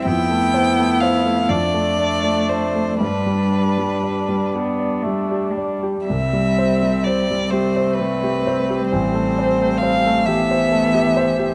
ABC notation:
X:1
M:6/8
L:1/16
Q:3/8=42
K:C
V:1 name="Violin"
g4 f2 d4 c2 | B6 z6 | e4 d2 c2 B4 | c4 f2 e6 |]
V:2 name="Grand piano"
F,, A, c A, c A, F,, A, d A, d A, | G,, G, d G, d G, G d G, G d G | C,, G, c G, c G, G c G, G c G | A,,, A, c A, c A, G c A, G c G |]
V:3 name="Viola"
E6 D6 | D12 | C6 C6- | C6 B,6 |]
V:4 name="Cello" clef=bass
B,6 A,6 | G,6 B,2 A,2 G,2 | G,6 A,6 | G,6 E,6 |]